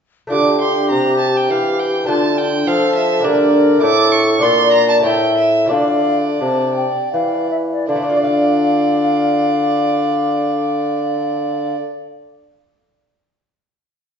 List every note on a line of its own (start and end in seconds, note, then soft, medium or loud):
0.27 0.87 A3 medium
0.27 2.03 D4 soft
0.27 2.04 F4 soft
0.31 0.87 D3 medium
0.31 2.10 G4 medium
0.31 0.59 D6 medium
0.61 0.90 C6 medium
0.90 1.52 C3 medium
0.90 1.46 C3 soft
0.90 1.19 A#5 medium
1.20 1.38 A5 medium
1.37 1.52 G5 medium
1.50 2.08 E3 medium
1.50 2.05 E3 medium
1.50 1.81 F5 medium
1.79 2.08 G5 medium
2.04 3.19 A3 medium
2.04 3.19 D4 medium
2.04 3.20 F4 soft
2.08 2.63 D3 medium
2.08 2.66 D3 medium
2.08 2.66 F4 medium
2.08 2.39 A5 medium
2.38 2.69 G5 medium
2.67 3.20 F3 medium
2.67 3.26 F3 medium
2.67 3.26 A4 medium
2.67 2.94 F5 loud
2.95 3.26 E5 medium
3.20 3.78 A#3 medium
3.20 3.80 D4 medium
3.20 3.80 G4 medium
3.20 3.53 A#4 medium
3.20 3.81 D5 medium
3.25 3.83 D3 medium
3.25 3.79 D3 medium
3.53 3.84 A#4 medium
3.78 4.38 A3 medium
3.78 4.39 E4 medium
3.78 4.40 A4 medium
3.78 4.42 A4 medium
3.78 4.13 D6 loud
3.83 4.38 A2 medium
3.83 4.41 A2 medium
4.12 4.43 C#6 loud
4.39 5.01 A#2 medium
4.39 5.04 A#2 medium
4.39 5.01 D4 medium
4.39 5.02 D5 medium
4.39 5.03 D5 medium
4.39 4.71 C6 loud
4.72 4.88 A#5 loud
4.89 4.95 A5 medium
5.00 5.65 A3 medium
5.00 5.67 E4 medium
5.00 5.68 C#5 medium
5.00 5.36 G5 medium
5.05 5.67 A2 medium
5.05 5.73 A2 medium
5.05 5.70 E5 medium
5.37 5.70 E5 medium
5.66 6.36 A3 medium
5.66 7.83 F4 soft
5.66 7.83 D5 medium
5.70 6.37 D3 medium
5.70 6.41 D3 medium
5.70 7.47 D5 medium
5.70 6.18 F5 medium
6.40 6.84 C3 soft
6.40 6.87 C3 medium
6.40 6.74 A5 medium
6.76 7.12 G5 medium
7.13 7.84 E3 soft
7.13 7.85 E3 medium
7.13 7.50 F5 medium
7.51 7.57 E5 medium
7.72 7.88 D5 medium
7.88 11.76 D3 medium
7.88 11.77 D3 medium
7.88 11.77 D5 medium
7.88 11.77 F5 medium
7.96 11.84 A3 medium
8.03 11.91 D4 medium
8.10 11.98 F4 medium
8.17 8.23 D5 medium
8.24 12.12 F5 medium